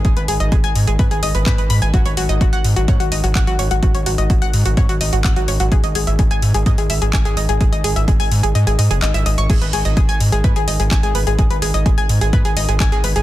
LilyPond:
<<
  \new Staff \with { instrumentName = "Synth arpeggio sound" } { \time 4/4 \key gis \minor \tempo 4 = 127 gis'16 b'16 gis'16 dis''16 gis'16 gis''16 r16 gis'16 b'16 gis'16 dis''16 b'16 b'16 b'16 b''16 gis''16 | fis'16 cis''16 fis'16 dis''16 fis'16 fis''16 r16 fis'16 cis''16 fis'16 dis''16 fis'16 fis''16 fis'16 cis''16 fis'16 | fis'16 cis''16 fis'16 dis''16 fis'16 fis''16 r16 fis'16 cis''16 fis'16 dis''16 fis'16 fis''16 fis'16 cis''16 fis'16 | gis'16 dis''16 gis'16 e''16 gis'16 gis''16 r16 gis'16 dis''16 gis'16 e''16 gis'16 gis''16 gis'16 dis''16 gis'16 |
gis'16 dis''16 gis'16 e''16 gis'16 gis''16 r16 gis'16 dis''16 gis'16 dis''16 gis'16 dis''16 e''16 dis''16 cis'''16 | gis'16 b'16 gis'16 dis''16 gis'16 gis''16 r16 gis'16 b'16 gis'16 dis''16 gis'16 gis''16 gis'16 b'16 gis'16 | gis'16 b'16 gis'16 dis''16 gis'16 gis''16 r16 gis'16 b'16 gis'16 dis''16 gis'16 gis''16 gis'16 b'16 gis'16 | }
  \new Staff \with { instrumentName = "Analog synth bass" } { \clef bass \time 4/4 \key gis \minor gis,,16 gis,,16 gis,,16 gis,,16 gis,,16 gis,,16 gis,16 gis,,16 gis,16 gis,,16 gis,,16 gis,,16 gis,16 gis,,16 gis,16 gis,,16 | gis,,16 gis,,16 gis,,16 gis,,16 gis,,16 gis,,16 gis,16 gis,,16 gis,16 gis,,16 gis,,16 gis,,16 gis,,16 gis,,16 gis,,16 gis,,16 | gis,,16 gis,,16 gis,,16 gis,,16 gis,,16 gis,,16 gis,16 gis,,16 gis,16 gis,,16 gis,,16 gis,,16 gis,,16 gis,,16 gis,,16 gis,,16 | gis,,16 gis,,16 gis,,16 gis,,16 gis,,16 gis,,16 gis,16 gis,,16 gis,16 gis,,16 gis,,16 gis,,16 gis,,16 gis,,16 gis,,16 gis,,16 |
gis,,16 gis,,16 gis,,16 gis,,16 gis,,16 gis,,16 gis,16 gis,,16 gis,16 gis,,16 gis,16 fis,,16 gis,,16 gis,,16 gis,,16 gis,,16 | gis,,16 gis,,16 gis,,16 gis,,16 gis,,16 gis,,16 gis,16 gis,,16 gis,16 gis,,16 gis,,16 gis,,16 gis,,16 gis,,16 gis,,16 gis,,16 | gis,,16 gis,,16 gis,,16 gis,,16 gis,,16 gis,,16 gis,16 gis,,16 gis,16 gis,,16 gis,,16 gis,,16 gis,,16 gis,,16 gis,,16 gis,,16 | }
  \new DrumStaff \with { instrumentName = "Drums" } \drummode { \time 4/4 <hh bd>16 hh16 hho16 hh16 <hh bd>16 hh16 hho16 hh16 <hh bd>16 hh16 hho16 hh16 <hc hh bd>16 hh16 hho16 hh16 | <hh bd>16 hh16 hho16 hh16 <hh bd>16 hh16 hho16 hh16 <hh bd>16 hh16 hho16 hh16 <hc hh bd>16 hh16 hho16 hh16 | <hh bd>16 hh16 hho16 hh16 <hh bd>16 hh16 hho16 hh16 <hh bd>16 hh16 hho16 hh16 <hc hh bd>16 hh16 hho16 hh16 | <hh bd>16 hh16 hho16 hh16 <hh bd>16 hh16 hho16 hh16 <hh bd>16 hh16 hho16 hh16 <hc hh bd>16 hh16 hho16 hh16 |
<hh bd>16 hh16 hho16 hh16 <hh bd>16 hho16 hho16 hh16 hh16 hh16 hho16 hh16 <hc hh>16 hh16 hho16 hh16 | <cymc hh bd>16 hh16 hho16 hh16 <hh bd>16 hh16 hho16 hh16 <hh bd>16 hh16 hho16 hh16 <hc hh bd>16 hh16 hho16 hh16 | <hh bd>16 hh16 hho16 hh16 <hh bd>16 hh16 hho16 hh16 <hh bd>16 hh16 hho16 hh16 <hc hh bd>16 hh16 hho16 hh16 | }
>>